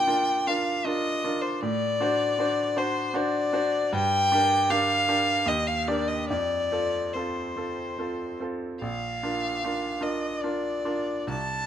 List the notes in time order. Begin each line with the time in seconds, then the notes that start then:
Already playing: A#2 D4 F4 A#4 G5
0.07 D4 F4 A#4
0.47 D4 F4 A#4 F5
0.85 D4 F4 A#4 D#5
1.24 D4 F4 A#4
1.41 C5
1.61 A2 D5
2.01 D4 F#4 C5
2.39 D4 F#4 C5
2.76 D4 F#4 C5
3.14 D4 F#4 C5 D5
3.53 D4 F#4 C5
3.93 G2 G5
4.32 D4 G4 A#4
4.70 D4 G4 A#4 F5
5.09 D4 G4 A#4
5.46 D#2 D#5
5.67 F5
5.88 D4 G4 A#4 D5
6.08 D#5
6.29 F2 D5
6.71 C4 F4 A4
7.14 C4 F4 A4 C5
7.56 C4 F4 A4
7.98 C4 F4 A4
8.40 C4 F4 A4
8.81 A#1 F5
9.23 D4 F4 A#4
9.64 D4 F4 A#4
10.01 D4 F4 A#4 D#5
10.41 D4 F4 A#4 D5
10.85 D4 F4 A#4
11.27 C2 A5